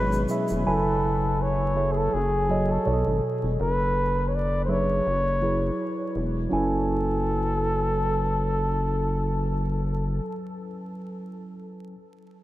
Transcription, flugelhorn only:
0.00 0.30 B4 loud
0.70 1.43 A4 medium
1.42 1.94 C#5 medium
1.92 1.99 G#4 medium
1.98 2.15 A4 medium
2.14 2.72 G#4 medium
2.71 3.23 A4 medium
3.61 4.30 B4 loud
4.28 4.37 C#5 medium
4.35 4.63 D5 medium
4.65 4.72 C5 medium
4.71 6.15 C#5 medium
6.53 10.21 A4 medium

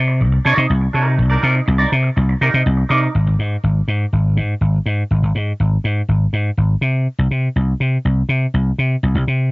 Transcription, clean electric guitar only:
0.08 muted clean electric guitar stroke medium
0.21 muted clean electric guitar stroke soft
0.32 muted clean electric guitar stroke medium
0.45 0.65 D#4 medium
0.45 0.58 A#4 medium
0.45 0.56 D5 loud
0.58 muted clean electric guitar stroke medium
0.82 muted clean electric guitar stroke soft
0.93 1.14 D#4 medium
0.93 1.07 A#4 loud
0.93 1.05 D5 loud
1.07 muted clean electric guitar stroke soft
1.18 muted clean electric guitar stroke soft
1.30 1.41 D#4 medium
1.30 1.42 A#4 medium
1.30 1.43 D5 medium
1.42 1.58 D#4 medium
1.42 1.55 A#4 medium
1.42 1.53 D5 medium
1.55 muted clean electric guitar stroke soft
1.66 muted clean electric guitar stroke soft
1.78 1.90 D#4 medium
1.78 1.90 A#4 medium
1.78 1.91 D5 medium
1.91 muted clean electric guitar stroke soft
2.03 muted clean electric guitar stroke medium
2.16 muted clean electric guitar stroke soft
2.29 muted clean electric guitar stroke medium
2.41 2.61 D#4 loud
2.41 2.53 A#4 loud
2.41 2.51 D5 medium
2.52 muted clean electric guitar stroke soft
2.77 muted clean electric guitar stroke soft
2.89 3.09 D#4 loud
2.89 3.02 A#4 medium
2.89 3.00 D5 loud
3.02 muted clean electric guitar stroke soft

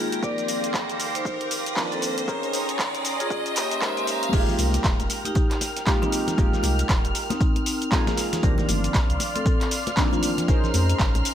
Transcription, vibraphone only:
0.00 0.19 F4 medium
0.00 0.19 G#4 loud
0.23 0.46 A#4 medium
0.23 0.46 D5 loud
1.15 1.47 D#4 medium
1.15 1.47 C5 loud
1.92 2.24 C4 medium
1.92 2.24 A4 medium
3.20 3.52 F4 medium
3.20 3.52 G#4 medium
3.56 3.92 A#3 medium
3.56 3.92 G4 medium
3.97 4.29 A#3 medium
3.97 4.29 G4 medium
4.33 4.56 F4 medium
4.33 4.56 G#4 loud
5.25 5.58 D#4 medium
5.25 5.58 G4 loud
6.02 6.34 C4 medium
6.02 6.34 D#4 medium
7.30 7.63 C4 medium
7.30 7.63 D#4 medium
7.66 8.02 C4 medium
7.66 8.02 D#4 medium
8.07 8.40 F4 medium
8.07 8.40 G#4 medium
8.43 8.66 G4 medium
8.43 8.66 A#4 loud
9.35 9.68 C4 medium
9.35 9.68 A4 loud
10.13 10.45 D4 medium
10.13 10.45 F4 medium

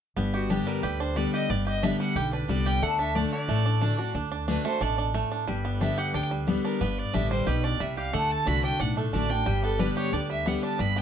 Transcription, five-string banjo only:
0.16 1.49 B3 medium
0.34 0.83 G4 medium
0.50 1.00 D4 medium
0.67 1.13 G3 medium
0.83 1.30 G4 medium
1.00 1.83 D4 medium
1.16 1.63 G3 medium
1.34 1.65 G4 medium
1.50 1.96 B3 medium
1.67 2.13 G4 medium
1.83 2.33 D4 medium
2.00 2.46 G3 medium
2.16 2.63 G4 medium
2.33 2.99 D4 medium
2.49 2.82 G3 medium
2.66 2.82 G4 medium
2.83 3.48 A3 medium
2.99 3.15 D4 medium
3.15 3.65 D4 medium
3.33 3.79 D3 medium
3.49 3.96 A3 medium
3.66 3.81 D4 medium
3.81 3.99 D4 medium
3.99 4.15 D4 medium
4.15 4.32 D4 medium
4.32 4.47 D4 medium
4.48 4.81 D4 medium
4.65 5.11 A3 medium
4.81 4.98 D4 medium
4.98 5.31 D4 medium
5.14 5.47 A3 medium
5.32 5.81 D4 medium
5.47 6.31 G3 medium
5.65 6.47 B3 medium
5.81 6.14 D4 medium
5.98 6.44 G4 medium
6.14 6.64 D4 medium
6.31 6.77 G3 medium
6.48 6.80 B3 medium
6.65 7.14 D4 medium
6.81 7.28 B3 medium
7.14 7.63 D4 medium
7.31 7.77 G3 medium
7.47 7.94 G4 medium
7.64 8.46 D4 medium
7.80 8.13 G3 medium
7.97 8.13 G4 medium
8.13 8.60 A3 medium
8.47 8.63 D4 medium
8.64 8.79 D4 medium
8.80 9.13 D4 medium
8.97 9.43 A3 medium
9.13 9.30 D4 medium
9.30 9.79 D4 medium
9.46 10.29 G3 medium
9.63 10.46 B3 medium
9.79 10.12 D4 medium
9.97 10.43 G4 medium
10.13 10.63 D4 medium
10.30 10.76 G3 medium
10.46 10.93 B3 medium
10.63 11.02 D4 medium
10.79 11.02 G3 medium
10.96 11.02 B3 medium

